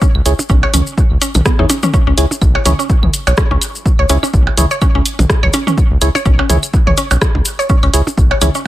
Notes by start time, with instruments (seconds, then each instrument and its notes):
0.02 synth arpeggio sound C#4, kick, maracas
0.15 analog synth bass C#2, claves
0.26 analog synth bass C#2, synth stab E4 G#4 C#5, closed hi-hat, maracas
0.39 percussion blips, maracas
0.49 analog synth bass B1, synth arpeggio sound C#4, kick, maracas
0.63 synth arpeggio sound C#5, percussion blips
0.74 analog synth bass C#2, synth arpeggio sound C#4, closed hi-hat, high tom, claves, maracas
0.87 maracas
0.98 kick, maracas
1.11 analog synth bass C#2
1.22 synth arpeggio sound C#4, closed hi-hat, maracas
1.34 analog synth bass B1, closed hi-hat, high tom, percussion blips, claves, maracas
1.45 synth arpeggio sound B3, kick, cross-stick, maracas
1.59 analog synth bass E2, synth arpeggio sound D#4, synth stab E4 G#4 C#5, high tom
1.69 synth arpeggio sound C#4, closed hi-hat, percussion blips, maracas
1.83 synth arpeggio sound C#4, high tom, maracas
1.94 synth arpeggio sound C#4, kick, maracas
2.07 analog synth bass C#2, synth arpeggio sound C#4
2.18 analog synth bass C#2, synth stab E4 G#4 C#5, closed hi-hat, maracas
2.31 percussion blips, maracas
2.42 analog synth bass B1, kick, claves, maracas
2.55 synth arpeggio sound C#5, percussion blips
2.65 analog synth bass C#2, synth arpeggio sound C#4, synth stab E4 G#4 C#5, closed hi-hat, high tom, maracas
2.79 synth arpeggio sound C#4, maracas
2.89 kick, maracas
3.03 analog synth bass C#2, high tom, claves
3.13 closed hi-hat, maracas
3.27 analog synth bass B1, synth arpeggio sound C#5, closed hi-hat, percussion blips, maracas
3.37 synth arpeggio sound C#4, kick, cross-stick, maracas
3.51 analog synth bass C#2, synth arpeggio sound C#4, percussion blips
3.61 closed hi-hat, claves, maracas
3.75 maracas
3.86 kick, maracas
3.99 analog synth bass C#2, synth arpeggio sound C#5
4.09 analog synth bass C#2, synth arpeggio sound C#4, synth stab E4 G#4 C#5, closed hi-hat, maracas
4.23 synth arpeggio sound C#4, percussion blips, claves, maracas
4.34 analog synth bass B1, kick, maracas
4.47 percussion blips
4.57 analog synth bass C#2, synth stab E4 G#4 C#5, closed hi-hat, high tom, maracas
4.71 synth arpeggio sound C#5, maracas
4.81 synth arpeggio sound C#4, kick, claves, maracas
4.95 analog synth bass C#2, synth arpeggio sound C#4
5.05 closed hi-hat, maracas
5.19 analog synth bass B1, closed hi-hat, high tom, percussion blips, maracas
5.30 kick, cross-stick, maracas
5.43 analog synth bass C#2, synth arpeggio sound C#5, high tom, claves
5.53 synth arpeggio sound C#4, closed hi-hat, percussion blips, maracas
5.67 synth arpeggio sound C#4, high tom, maracas
5.78 kick, maracas
5.91 analog synth bass C#2
6.01 analog synth bass C#2, synth stab E4 G#4 C#5, closed hi-hat, claves, maracas
6.15 synth arpeggio sound C#5, percussion blips, maracas
6.25 analog synth bass B1, synth arpeggio sound C#4, kick, maracas
6.39 synth arpeggio sound C#4, percussion blips
6.50 analog synth bass C#2, synth stab E4 G#4 C#5, closed hi-hat, high tom, maracas
6.63 claves, maracas
6.74 kick, maracas
6.87 analog synth bass C#2, synth arpeggio sound C#5, high tom
6.97 synth arpeggio sound C#4, closed hi-hat, maracas
7.11 analog synth bass B1, synth arpeggio sound C#4, closed hi-hat, percussion blips, maracas
7.21 kick, cross-stick, claves, maracas
7.35 analog synth bass C#2, percussion blips
7.45 closed hi-hat, maracas
7.59 synth arpeggio sound C#5, maracas
7.69 synth arpeggio sound C#4, kick, maracas
7.83 analog synth bass C#2, synth arpeggio sound C#4, closed hi-hat, claves
7.94 analog synth bass C#2, synth stab E4 G#4 C#5, closed hi-hat, maracas
8.07 percussion blips, maracas
8.18 analog synth bass B1, kick, maracas
8.31 synth arpeggio sound C#5, percussion blips
8.41 analog synth bass C#2, synth arpeggio sound C#4, synth stab E4 G#4 C#5, closed hi-hat, high tom, claves, maracas
8.55 synth arpeggio sound C#4, maracas